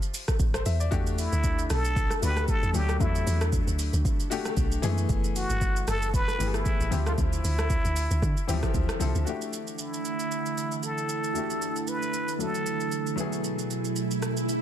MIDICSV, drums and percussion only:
0, 0, Header, 1, 2, 480
1, 0, Start_track
1, 0, Key_signature, 1, "minor"
1, 0, Tempo, 521739
1, 846, Time_signature, 4, 2, 24, 8
1, 13448, End_track
2, 0, Start_track
2, 0, Title_t, "Drums"
2, 22, Note_on_c, 9, 82, 52
2, 114, Note_off_c, 9, 82, 0
2, 131, Note_on_c, 9, 46, 70
2, 131, Note_on_c, 9, 82, 118
2, 223, Note_off_c, 9, 46, 0
2, 223, Note_off_c, 9, 82, 0
2, 258, Note_on_c, 9, 37, 89
2, 258, Note_on_c, 9, 82, 51
2, 259, Note_on_c, 9, 36, 97
2, 350, Note_off_c, 9, 37, 0
2, 350, Note_off_c, 9, 82, 0
2, 351, Note_off_c, 9, 36, 0
2, 363, Note_on_c, 9, 82, 78
2, 364, Note_on_c, 9, 36, 109
2, 455, Note_off_c, 9, 82, 0
2, 456, Note_off_c, 9, 36, 0
2, 498, Note_on_c, 9, 37, 100
2, 500, Note_on_c, 9, 82, 53
2, 590, Note_off_c, 9, 37, 0
2, 592, Note_off_c, 9, 82, 0
2, 604, Note_on_c, 9, 46, 48
2, 604, Note_on_c, 9, 82, 87
2, 696, Note_off_c, 9, 46, 0
2, 696, Note_off_c, 9, 82, 0
2, 739, Note_on_c, 9, 82, 49
2, 831, Note_off_c, 9, 82, 0
2, 846, Note_on_c, 9, 36, 118
2, 846, Note_on_c, 9, 82, 77
2, 938, Note_off_c, 9, 36, 0
2, 938, Note_off_c, 9, 82, 0
2, 981, Note_on_c, 9, 82, 61
2, 1073, Note_off_c, 9, 82, 0
2, 1089, Note_on_c, 9, 46, 59
2, 1089, Note_on_c, 9, 82, 100
2, 1181, Note_off_c, 9, 46, 0
2, 1181, Note_off_c, 9, 82, 0
2, 1218, Note_on_c, 9, 82, 52
2, 1310, Note_off_c, 9, 82, 0
2, 1323, Note_on_c, 9, 36, 100
2, 1323, Note_on_c, 9, 82, 82
2, 1415, Note_off_c, 9, 36, 0
2, 1415, Note_off_c, 9, 82, 0
2, 1461, Note_on_c, 9, 82, 62
2, 1553, Note_off_c, 9, 82, 0
2, 1565, Note_on_c, 9, 37, 100
2, 1565, Note_on_c, 9, 46, 57
2, 1565, Note_on_c, 9, 82, 94
2, 1657, Note_off_c, 9, 37, 0
2, 1657, Note_off_c, 9, 46, 0
2, 1657, Note_off_c, 9, 82, 0
2, 1699, Note_on_c, 9, 82, 65
2, 1791, Note_off_c, 9, 82, 0
2, 1806, Note_on_c, 9, 36, 125
2, 1809, Note_on_c, 9, 82, 71
2, 1898, Note_off_c, 9, 36, 0
2, 1901, Note_off_c, 9, 82, 0
2, 1935, Note_on_c, 9, 37, 83
2, 1941, Note_on_c, 9, 82, 56
2, 2027, Note_off_c, 9, 37, 0
2, 2033, Note_off_c, 9, 82, 0
2, 2050, Note_on_c, 9, 46, 70
2, 2050, Note_on_c, 9, 82, 119
2, 2142, Note_off_c, 9, 46, 0
2, 2142, Note_off_c, 9, 82, 0
2, 2177, Note_on_c, 9, 37, 94
2, 2178, Note_on_c, 9, 82, 52
2, 2269, Note_off_c, 9, 37, 0
2, 2270, Note_off_c, 9, 82, 0
2, 2282, Note_on_c, 9, 82, 79
2, 2283, Note_on_c, 9, 36, 108
2, 2374, Note_off_c, 9, 82, 0
2, 2375, Note_off_c, 9, 36, 0
2, 2419, Note_on_c, 9, 82, 49
2, 2511, Note_off_c, 9, 82, 0
2, 2523, Note_on_c, 9, 46, 50
2, 2523, Note_on_c, 9, 82, 80
2, 2615, Note_off_c, 9, 46, 0
2, 2615, Note_off_c, 9, 82, 0
2, 2658, Note_on_c, 9, 37, 93
2, 2658, Note_on_c, 9, 82, 49
2, 2750, Note_off_c, 9, 37, 0
2, 2750, Note_off_c, 9, 82, 0
2, 2766, Note_on_c, 9, 36, 124
2, 2766, Note_on_c, 9, 82, 75
2, 2858, Note_off_c, 9, 36, 0
2, 2858, Note_off_c, 9, 82, 0
2, 2901, Note_on_c, 9, 82, 62
2, 2993, Note_off_c, 9, 82, 0
2, 3010, Note_on_c, 9, 46, 58
2, 3010, Note_on_c, 9, 82, 100
2, 3102, Note_off_c, 9, 46, 0
2, 3102, Note_off_c, 9, 82, 0
2, 3139, Note_on_c, 9, 37, 96
2, 3139, Note_on_c, 9, 82, 57
2, 3231, Note_off_c, 9, 37, 0
2, 3231, Note_off_c, 9, 82, 0
2, 3244, Note_on_c, 9, 36, 106
2, 3244, Note_on_c, 9, 82, 84
2, 3336, Note_off_c, 9, 36, 0
2, 3336, Note_off_c, 9, 82, 0
2, 3382, Note_on_c, 9, 82, 60
2, 3474, Note_off_c, 9, 82, 0
2, 3486, Note_on_c, 9, 46, 59
2, 3486, Note_on_c, 9, 82, 94
2, 3578, Note_off_c, 9, 46, 0
2, 3578, Note_off_c, 9, 82, 0
2, 3620, Note_on_c, 9, 82, 66
2, 3712, Note_off_c, 9, 82, 0
2, 3726, Note_on_c, 9, 36, 116
2, 3729, Note_on_c, 9, 82, 72
2, 3818, Note_off_c, 9, 36, 0
2, 3821, Note_off_c, 9, 82, 0
2, 3862, Note_on_c, 9, 82, 55
2, 3954, Note_off_c, 9, 82, 0
2, 3971, Note_on_c, 9, 46, 68
2, 3971, Note_on_c, 9, 82, 118
2, 4063, Note_off_c, 9, 46, 0
2, 4063, Note_off_c, 9, 82, 0
2, 4098, Note_on_c, 9, 37, 91
2, 4098, Note_on_c, 9, 82, 52
2, 4190, Note_off_c, 9, 37, 0
2, 4190, Note_off_c, 9, 82, 0
2, 4203, Note_on_c, 9, 82, 78
2, 4204, Note_on_c, 9, 36, 107
2, 4295, Note_off_c, 9, 82, 0
2, 4296, Note_off_c, 9, 36, 0
2, 4340, Note_on_c, 9, 82, 51
2, 4432, Note_off_c, 9, 82, 0
2, 4444, Note_on_c, 9, 46, 49
2, 4444, Note_on_c, 9, 82, 82
2, 4536, Note_off_c, 9, 46, 0
2, 4536, Note_off_c, 9, 82, 0
2, 4579, Note_on_c, 9, 82, 49
2, 4671, Note_off_c, 9, 82, 0
2, 4686, Note_on_c, 9, 36, 125
2, 4686, Note_on_c, 9, 82, 73
2, 4778, Note_off_c, 9, 36, 0
2, 4778, Note_off_c, 9, 82, 0
2, 4821, Note_on_c, 9, 82, 60
2, 4913, Note_off_c, 9, 82, 0
2, 4930, Note_on_c, 9, 46, 57
2, 4930, Note_on_c, 9, 82, 99
2, 5022, Note_off_c, 9, 46, 0
2, 5022, Note_off_c, 9, 82, 0
2, 5059, Note_on_c, 9, 82, 56
2, 5151, Note_off_c, 9, 82, 0
2, 5164, Note_on_c, 9, 36, 99
2, 5164, Note_on_c, 9, 82, 84
2, 5256, Note_off_c, 9, 36, 0
2, 5256, Note_off_c, 9, 82, 0
2, 5302, Note_on_c, 9, 82, 58
2, 5394, Note_off_c, 9, 82, 0
2, 5406, Note_on_c, 9, 46, 58
2, 5406, Note_on_c, 9, 82, 101
2, 5407, Note_on_c, 9, 37, 101
2, 5498, Note_off_c, 9, 46, 0
2, 5498, Note_off_c, 9, 82, 0
2, 5499, Note_off_c, 9, 37, 0
2, 5540, Note_on_c, 9, 82, 66
2, 5632, Note_off_c, 9, 82, 0
2, 5646, Note_on_c, 9, 36, 119
2, 5650, Note_on_c, 9, 82, 74
2, 5738, Note_off_c, 9, 36, 0
2, 5742, Note_off_c, 9, 82, 0
2, 5777, Note_on_c, 9, 37, 80
2, 5782, Note_on_c, 9, 82, 54
2, 5869, Note_off_c, 9, 37, 0
2, 5874, Note_off_c, 9, 82, 0
2, 5891, Note_on_c, 9, 46, 71
2, 5891, Note_on_c, 9, 82, 117
2, 5983, Note_off_c, 9, 46, 0
2, 5983, Note_off_c, 9, 82, 0
2, 6018, Note_on_c, 9, 37, 87
2, 6019, Note_on_c, 9, 82, 51
2, 6110, Note_off_c, 9, 37, 0
2, 6111, Note_off_c, 9, 82, 0
2, 6124, Note_on_c, 9, 36, 110
2, 6124, Note_on_c, 9, 82, 82
2, 6216, Note_off_c, 9, 36, 0
2, 6216, Note_off_c, 9, 82, 0
2, 6261, Note_on_c, 9, 82, 51
2, 6353, Note_off_c, 9, 82, 0
2, 6365, Note_on_c, 9, 46, 50
2, 6365, Note_on_c, 9, 82, 86
2, 6457, Note_off_c, 9, 46, 0
2, 6457, Note_off_c, 9, 82, 0
2, 6500, Note_on_c, 9, 37, 90
2, 6500, Note_on_c, 9, 82, 48
2, 6592, Note_off_c, 9, 37, 0
2, 6592, Note_off_c, 9, 82, 0
2, 6606, Note_on_c, 9, 36, 119
2, 6606, Note_on_c, 9, 82, 74
2, 6698, Note_off_c, 9, 36, 0
2, 6698, Note_off_c, 9, 82, 0
2, 6741, Note_on_c, 9, 82, 64
2, 6833, Note_off_c, 9, 82, 0
2, 6850, Note_on_c, 9, 46, 60
2, 6850, Note_on_c, 9, 82, 96
2, 6942, Note_off_c, 9, 46, 0
2, 6942, Note_off_c, 9, 82, 0
2, 6979, Note_on_c, 9, 82, 55
2, 6980, Note_on_c, 9, 37, 97
2, 7071, Note_off_c, 9, 82, 0
2, 7072, Note_off_c, 9, 37, 0
2, 7084, Note_on_c, 9, 36, 103
2, 7084, Note_on_c, 9, 82, 81
2, 7176, Note_off_c, 9, 36, 0
2, 7176, Note_off_c, 9, 82, 0
2, 7222, Note_on_c, 9, 82, 59
2, 7314, Note_off_c, 9, 82, 0
2, 7326, Note_on_c, 9, 46, 58
2, 7326, Note_on_c, 9, 82, 96
2, 7418, Note_off_c, 9, 46, 0
2, 7418, Note_off_c, 9, 82, 0
2, 7460, Note_on_c, 9, 82, 64
2, 7552, Note_off_c, 9, 82, 0
2, 7566, Note_on_c, 9, 36, 121
2, 7570, Note_on_c, 9, 82, 72
2, 7658, Note_off_c, 9, 36, 0
2, 7662, Note_off_c, 9, 82, 0
2, 7702, Note_on_c, 9, 82, 53
2, 7794, Note_off_c, 9, 82, 0
2, 7811, Note_on_c, 9, 46, 68
2, 7811, Note_on_c, 9, 82, 112
2, 7903, Note_off_c, 9, 46, 0
2, 7903, Note_off_c, 9, 82, 0
2, 7938, Note_on_c, 9, 37, 92
2, 7939, Note_on_c, 9, 36, 97
2, 7939, Note_on_c, 9, 82, 50
2, 8030, Note_off_c, 9, 37, 0
2, 8031, Note_off_c, 9, 36, 0
2, 8031, Note_off_c, 9, 82, 0
2, 8043, Note_on_c, 9, 82, 77
2, 8044, Note_on_c, 9, 36, 112
2, 8135, Note_off_c, 9, 82, 0
2, 8136, Note_off_c, 9, 36, 0
2, 8178, Note_on_c, 9, 37, 100
2, 8180, Note_on_c, 9, 82, 51
2, 8270, Note_off_c, 9, 37, 0
2, 8272, Note_off_c, 9, 82, 0
2, 8285, Note_on_c, 9, 46, 47
2, 8285, Note_on_c, 9, 82, 83
2, 8377, Note_off_c, 9, 46, 0
2, 8377, Note_off_c, 9, 82, 0
2, 8419, Note_on_c, 9, 82, 48
2, 8511, Note_off_c, 9, 82, 0
2, 8527, Note_on_c, 9, 82, 67
2, 8619, Note_off_c, 9, 82, 0
2, 8662, Note_on_c, 9, 82, 56
2, 8754, Note_off_c, 9, 82, 0
2, 8770, Note_on_c, 9, 82, 95
2, 8862, Note_off_c, 9, 82, 0
2, 8899, Note_on_c, 9, 82, 49
2, 8991, Note_off_c, 9, 82, 0
2, 9003, Note_on_c, 9, 82, 76
2, 9095, Note_off_c, 9, 82, 0
2, 9141, Note_on_c, 9, 82, 56
2, 9233, Note_off_c, 9, 82, 0
2, 9246, Note_on_c, 9, 82, 87
2, 9338, Note_off_c, 9, 82, 0
2, 9379, Note_on_c, 9, 82, 60
2, 9471, Note_off_c, 9, 82, 0
2, 9490, Note_on_c, 9, 82, 67
2, 9582, Note_off_c, 9, 82, 0
2, 9622, Note_on_c, 9, 82, 50
2, 9714, Note_off_c, 9, 82, 0
2, 9731, Note_on_c, 9, 82, 106
2, 9823, Note_off_c, 9, 82, 0
2, 9858, Note_on_c, 9, 82, 47
2, 9950, Note_off_c, 9, 82, 0
2, 9963, Note_on_c, 9, 82, 73
2, 10055, Note_off_c, 9, 82, 0
2, 10100, Note_on_c, 9, 82, 46
2, 10192, Note_off_c, 9, 82, 0
2, 10204, Note_on_c, 9, 82, 76
2, 10296, Note_off_c, 9, 82, 0
2, 10339, Note_on_c, 9, 82, 47
2, 10431, Note_off_c, 9, 82, 0
2, 10447, Note_on_c, 9, 82, 72
2, 10539, Note_off_c, 9, 82, 0
2, 10581, Note_on_c, 9, 82, 58
2, 10673, Note_off_c, 9, 82, 0
2, 10690, Note_on_c, 9, 82, 95
2, 10782, Note_off_c, 9, 82, 0
2, 10819, Note_on_c, 9, 82, 52
2, 10911, Note_off_c, 9, 82, 0
2, 10924, Note_on_c, 9, 82, 73
2, 11016, Note_off_c, 9, 82, 0
2, 11062, Note_on_c, 9, 82, 55
2, 11154, Note_off_c, 9, 82, 0
2, 11166, Note_on_c, 9, 82, 93
2, 11258, Note_off_c, 9, 82, 0
2, 11300, Note_on_c, 9, 82, 61
2, 11392, Note_off_c, 9, 82, 0
2, 11410, Note_on_c, 9, 82, 67
2, 11502, Note_off_c, 9, 82, 0
2, 11542, Note_on_c, 9, 82, 50
2, 11634, Note_off_c, 9, 82, 0
2, 11651, Note_on_c, 9, 82, 105
2, 11743, Note_off_c, 9, 82, 0
2, 11779, Note_on_c, 9, 82, 47
2, 11871, Note_off_c, 9, 82, 0
2, 11884, Note_on_c, 9, 82, 74
2, 11976, Note_off_c, 9, 82, 0
2, 12020, Note_on_c, 9, 82, 46
2, 12112, Note_off_c, 9, 82, 0
2, 12125, Note_on_c, 9, 82, 74
2, 12217, Note_off_c, 9, 82, 0
2, 12259, Note_on_c, 9, 82, 45
2, 12351, Note_off_c, 9, 82, 0
2, 12366, Note_on_c, 9, 82, 71
2, 12458, Note_off_c, 9, 82, 0
2, 12501, Note_on_c, 9, 82, 57
2, 12593, Note_off_c, 9, 82, 0
2, 12609, Note_on_c, 9, 82, 92
2, 12701, Note_off_c, 9, 82, 0
2, 12738, Note_on_c, 9, 82, 51
2, 12830, Note_off_c, 9, 82, 0
2, 12843, Note_on_c, 9, 82, 77
2, 12935, Note_off_c, 9, 82, 0
2, 12981, Note_on_c, 9, 82, 52
2, 13073, Note_off_c, 9, 82, 0
2, 13085, Note_on_c, 9, 82, 91
2, 13086, Note_on_c, 9, 37, 91
2, 13177, Note_off_c, 9, 82, 0
2, 13178, Note_off_c, 9, 37, 0
2, 13219, Note_on_c, 9, 82, 62
2, 13311, Note_off_c, 9, 82, 0
2, 13329, Note_on_c, 9, 82, 69
2, 13421, Note_off_c, 9, 82, 0
2, 13448, End_track
0, 0, End_of_file